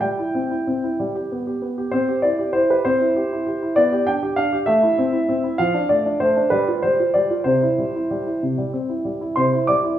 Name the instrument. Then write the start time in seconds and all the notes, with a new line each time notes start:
grand piano
0.01 G3 G5
0.19 E4
0.35 C4
0.51 E4
0.67 C4
0.84 E4
1.00 G3
1.15 G4
1.32 B3
1.47 G4
1.62 B3
1.78 G4
1.91 C4 C5
2.09 G4
2.22 E4 D5
2.39 G4
2.53 E4 C5
2.70 G4 B4
2.85 C4 C5
3.01 E4
3.16 G4
3.32 E4
3.47 G4
3.62 E4
3.76 B3 D5
3.92 G4
4.07 D4 G5
4.23 G4
4.36 D4 F5
4.53 G4
4.66 A3 E5
4.83 E4
4.98 C4
5.13 E4
5.29 C4
5.44 E4
5.58 F3 F5
5.74 D4
5.89 A3 D5
6.06 D4
6.20 A3 C5
6.36 D4
6.50 G3 B4
6.68 F4
6.82 G3 C5
6.99 F4
7.14 G3 D5
7.30 F4
7.44 C3 C5
7.63 E4
7.78 G3
7.95 E4
8.11 G3
8.27 E4
8.43 C3
8.58 G3
8.73 C4
8.89 E4
9.05 G3
9.21 E4
9.36 C3 C5 C6
9.53 E4
9.67 G3 D5 D6
9.84 E4